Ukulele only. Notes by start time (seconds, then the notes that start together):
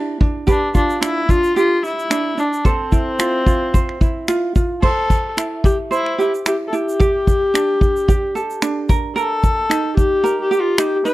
Already playing: D4 E4 G4
0.20 D4
0.47 G4 B4
0.74 F4
1.01 D4
1.29 D4
1.56 G4
2.10 D4
2.37 D4
2.65 A4 C5
2.92 E4
3.19 F4
3.46 F4
3.74 C5
4.01 E4
4.28 F4
4.56 F4
4.82 C5
5.37 E4
5.91 C5
6.18 G4
6.46 E4
6.73 E4
7.00 G4
7.54 D4
8.08 G4
8.35 A4
8.62 D4
8.89 A#4
9.16 A#4
9.70 D#4
10.24 A#4
10.51 G4
10.78 D#4
11.05 D#4